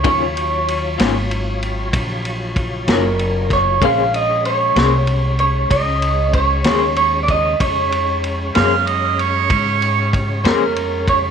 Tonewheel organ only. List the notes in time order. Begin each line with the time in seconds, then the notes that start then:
0.03 F#3 F4 C#5
3.81 G#3 C#4 C#5
7.59 G#3 C#4 C#5